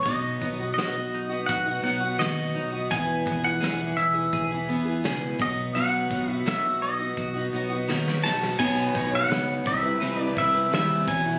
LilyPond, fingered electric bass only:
\new Staff \with { instrumentName = "Fingered electric bass" } { \clef bass \time 4/4 \key b \mixolydian \tempo 4 = 84 b,,8 b,,8 b,,4 b,,8 b,,8 dis,8 b,,8 | e,,8 e,,8 e,,8 e,,8 e,,8 e,8 cis,8 b,,8 | b,,8 b,,8 b,,4 b,,8 b,,8 dis,8 b,,8 | b,,8 b,,8 cis,8 c,8 c,8 c,8 dis,8 e,,8 | }